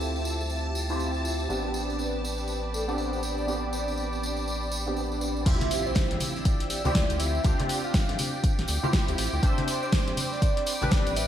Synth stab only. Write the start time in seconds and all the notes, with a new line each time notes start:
Already playing: C4 E4 F4 G4
0.89 C4 E4 F4 G4
1.49 B3 C4 D4 G4
2.88 B3 C4 D4 G4
3.47 B3 C4 D4 G4
4.86 B3 C4 D4 G4
5.46 C4 E4 F4 G4
6.85 C4 E4 F4 G4
7.44 C4 D4 F4 G4
8.83 C4 E4 F4 G4
9.42 C4 D4 G4 C5
10.81 C4 D4 G4 B4